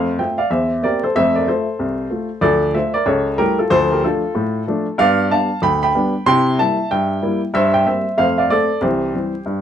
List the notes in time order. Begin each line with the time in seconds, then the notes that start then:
Already playing: F2 A3 C5 F5
0.19 A3 C4 F4 E5 G5
0.38 D5 F5
0.50 E2 C5 E5
0.83 A#3 C4 G4 A#4 D5
1.03 A4 C5
1.16 F2 A3 C5 E5
1.35 A#4 D5
1.47 A3 F4 A4 C5
1.79 C2
2.11 A3 F4
2.41 D2 F3 A4 D5
2.74 A3 F4 C5 E5
2.94 A#4 D5
3.06 C#2 A4 C#5
3.37 G3 A3 E4 G4 A#4
3.59 F4 A4
3.70 D2 F3 A4 C5
3.91 G4 A#4
4.03 F3 A3 D4 F4 A4
4.35 A2
4.67 F3 A3 D4
4.98 G2 B3 D5 F5
5.30 G3 B3 D4 F5 A5
5.62 D2 G5 B5
5.83 G5 B5
5.95 G3 B3 D4
6.26 C3 E4 G5 C6
6.58 G3 A#3 E4 E5 A5
6.91 G2 E5 G5
7.22 G3 A#3 E4
7.54 G2 C5 E5
7.74 E5 G5
7.86 G3 A#3 C4 C5 E5
8.18 F2 A3 C5 F5
8.38 D5 F5
8.50 A3 C4 A4 D5
8.81 C2 E3 G4 C5
9.14 E3 G3 C4
9.46 G2